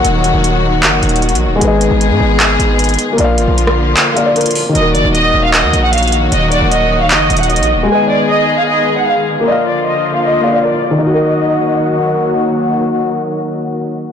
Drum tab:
HH |x-----------x-----------x-----------------------x-----------x---x---x---x---x---x---------------|x-----------x-----------x-----------------------x-----------x-----------x--x--x--x--x-----------|x-----------x-----------x-----------------------x-----------x-----------x--x--x--x--o-----------|x-----------x-----------x-----------------------x-----------x-----------x--x--x--x--x-----------|
CP |------------------------------------------------x-----------------------------------------------|------------------------------------------------x-----------------------------------------------|------------------------------------------------x-----------------------------------------------|------------------------------------------------x-----------------------------------------------|
SD |------------------------------------------------------------------------------------------------|------------------------------------------------------------------------------------------------|------------------------------r-----------------------------------------------------------------|------------------------------------------------------------------------------------------------|

HH |x-----------x-----------x-----------------------x-----------x---x---x---x---x---x---------------|------------------------------------------------------------------------------------------------|------------------------------------------------------------------------------------------------|------------------------------------------------------------------------------------------------|
CP |------------------------------------------------x-----------------------------------------------|------------------------------------------------------------------------------------------------|------------------------------------------------------------------------------------------------|------------------------------------------------------------------------------------------------|
SD |------------------------------------------------------------------------------------------------|------------------------------------------------------------------------------------------------|------------------------------------------------------------------------------------------------|------------------------------------------------------------------------------------------------|

HH |------------------------------------------------------------------------------------------------|
CP |------------------------------------------------------------------------------------------------|
SD |------------------------------------------------------------------------------------------------|